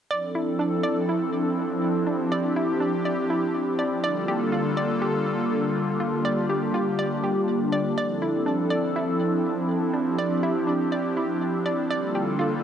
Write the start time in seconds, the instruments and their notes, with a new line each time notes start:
0.10 analog synth pad F3 C4 D4 E4 A4, synth pluck D5
0.35 synth pluck E4
0.59 synth pluck D4
0.83 synth pluck D5
1.09 synth pluck E4
2.07 synth pluck D4, analog synth pad G4
2.32 synth pluck D5
2.56 synth pluck E4
2.80 synth pluck D4
3.05 synth pluck D5
3.30 synth pluck E4
3.79 synth pluck D5
4.03 analog synth pad D3 G3 A#3 D4 F4 A4, synth pluck D5
4.28 synth pluck G4
4.52 synth pluck F4
4.77 synth pluck D5
5.02 synth pluck G4
6.00 synth pluck F4, analog synth pad G4
6.25 synth pluck D5
6.50 synth pluck G4
6.74 synth pluck F4
6.99 synth pluck D5
7.24 synth pluck G4
7.72 synth pluck D5
7.97 analog synth pad F3 C4 E4 A4, synth pluck D5
8.22 synth pluck E4
8.46 synth pluck D4
8.70 synth pluck D5
8.96 synth pluck E4
9.94 synth pluck D4, analog synth pad G4
10.19 synth pluck D5
10.43 synth pluck E4
10.67 synth pluck D4
10.92 synth pluck D5
11.17 synth pluck E4
11.66 synth pluck D5
11.90 analog synth pad D3 G3 A#3 D4 F4 A4, synth pluck D5
12.15 synth pluck G4
12.39 synth pluck F4